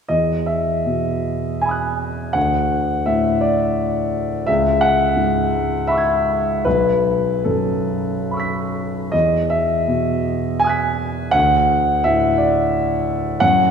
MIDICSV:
0, 0, Header, 1, 2, 480
1, 0, Start_track
1, 0, Tempo, 767263
1, 66, Time_signature, 3, 2, 24, 8
1, 1025, Tempo, 709220
1, 3905, Tempo, 782269
1, 4865, Tempo, 835655
1, 5825, Tempo, 751880
1, 6305, Tempo, 726392
1, 7745, Tempo, 685714
1, 8898, End_track
2, 0, Start_track
2, 0, Title_t, "Grand piano"
2, 0, Program_c, 0, 0
2, 53, Note_on_c, 0, 75, 59
2, 59, Note_on_c, 0, 40, 35
2, 187, Control_c, 0, 64, 127
2, 290, Note_on_c, 0, 76, 52
2, 301, Note_off_c, 0, 75, 0
2, 537, Note_on_c, 0, 47, 26
2, 1010, Note_on_c, 0, 80, 56
2, 1017, Note_off_c, 0, 76, 0
2, 1036, Note_on_c, 0, 83, 25
2, 1059, Note_on_c, 0, 87, 24
2, 1075, Note_on_c, 0, 90, 23
2, 1483, Note_off_c, 0, 40, 0
2, 1492, Note_off_c, 0, 83, 0
2, 1493, Note_on_c, 0, 78, 69
2, 1502, Note_on_c, 0, 38, 38
2, 1503, Note_off_c, 0, 87, 0
2, 1506, Note_off_c, 0, 80, 0
2, 1509, Note_off_c, 0, 47, 0
2, 1511, Note_off_c, 0, 90, 0
2, 1523, Control_c, 0, 64, 0
2, 1617, Control_c, 0, 64, 127
2, 1986, Note_on_c, 0, 76, 63
2, 1988, Note_off_c, 0, 78, 0
2, 1992, Note_on_c, 0, 45, 31
2, 2224, Note_on_c, 0, 74, 56
2, 2236, Note_off_c, 0, 76, 0
2, 2706, Note_off_c, 0, 74, 0
2, 2917, Note_off_c, 0, 38, 0
2, 2938, Note_on_c, 0, 76, 75
2, 2946, Note_on_c, 0, 37, 48
2, 2947, Note_off_c, 0, 45, 0
2, 2960, Control_c, 0, 64, 0
2, 3053, Control_c, 0, 64, 127
2, 3171, Note_on_c, 0, 78, 77
2, 3177, Note_off_c, 0, 76, 0
2, 3410, Note_on_c, 0, 44, 36
2, 3892, Note_on_c, 0, 76, 69
2, 3899, Note_on_c, 0, 83, 29
2, 3900, Note_off_c, 0, 78, 0
2, 3919, Note_on_c, 0, 85, 24
2, 3934, Note_on_c, 0, 88, 27
2, 3955, Note_on_c, 0, 92, 26
2, 4346, Note_off_c, 0, 83, 0
2, 4347, Note_off_c, 0, 37, 0
2, 4356, Note_off_c, 0, 85, 0
2, 4363, Note_off_c, 0, 88, 0
2, 4367, Note_off_c, 0, 76, 0
2, 4367, Note_on_c, 0, 71, 65
2, 4371, Note_off_c, 0, 44, 0
2, 4374, Note_off_c, 0, 92, 0
2, 4374, Note_on_c, 0, 35, 43
2, 4384, Control_c, 0, 64, 0
2, 4501, Control_c, 0, 64, 127
2, 4857, Note_on_c, 0, 69, 44
2, 4862, Note_off_c, 0, 71, 0
2, 4864, Note_on_c, 0, 42, 28
2, 5356, Note_on_c, 0, 83, 24
2, 5370, Note_on_c, 0, 85, 24
2, 5387, Note_on_c, 0, 88, 23
2, 5404, Note_on_c, 0, 95, 24
2, 5588, Note_off_c, 0, 69, 0
2, 5802, Note_off_c, 0, 35, 0
2, 5805, Note_off_c, 0, 83, 0
2, 5813, Note_off_c, 0, 85, 0
2, 5817, Note_on_c, 0, 75, 65
2, 5821, Note_off_c, 0, 88, 0
2, 5824, Note_off_c, 0, 42, 0
2, 5825, Note_on_c, 0, 40, 40
2, 5830, Note_off_c, 0, 95, 0
2, 5838, Control_c, 0, 64, 0
2, 5958, Control_c, 0, 64, 127
2, 6061, Note_on_c, 0, 76, 65
2, 6064, Note_off_c, 0, 75, 0
2, 6303, Note_on_c, 0, 47, 33
2, 6777, Note_on_c, 0, 80, 74
2, 6786, Note_off_c, 0, 76, 0
2, 6808, Note_on_c, 0, 87, 25
2, 6825, Note_on_c, 0, 90, 29
2, 6842, Note_on_c, 0, 95, 28
2, 7242, Note_off_c, 0, 40, 0
2, 7251, Note_off_c, 0, 87, 0
2, 7251, Note_on_c, 0, 78, 86
2, 7260, Note_off_c, 0, 90, 0
2, 7262, Note_off_c, 0, 80, 0
2, 7263, Note_on_c, 0, 38, 51
2, 7267, Note_off_c, 0, 47, 0
2, 7268, Note_off_c, 0, 95, 0
2, 7281, Control_c, 0, 64, 0
2, 7386, Control_c, 0, 64, 127
2, 7731, Note_on_c, 0, 76, 72
2, 7736, Note_off_c, 0, 78, 0
2, 7738, Note_on_c, 0, 45, 40
2, 7968, Note_on_c, 0, 74, 59
2, 7979, Note_off_c, 0, 76, 0
2, 8451, Note_off_c, 0, 74, 0
2, 8670, Note_off_c, 0, 38, 0
2, 8684, Note_on_c, 0, 78, 86
2, 8693, Note_on_c, 0, 42, 50
2, 8698, Note_off_c, 0, 45, 0
2, 8712, Control_c, 0, 64, 0
2, 8826, Control_c, 0, 64, 127
2, 8898, Note_off_c, 0, 42, 0
2, 8898, Note_off_c, 0, 78, 0
2, 8898, End_track
0, 0, End_of_file